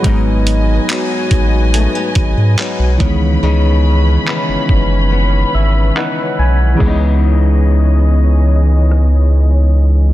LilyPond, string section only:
\new Staff \with { instrumentName = "String section" } { \time 4/4 \key cis \minor \tempo 4 = 71 <fis' b' dis'' gis''>2.~ <fis' b' dis'' gis''>8 <cis' b' cis'' b''>8~ | <cis' b' cis'' b''>1 | <e b gis' cis'' dis''>1 | }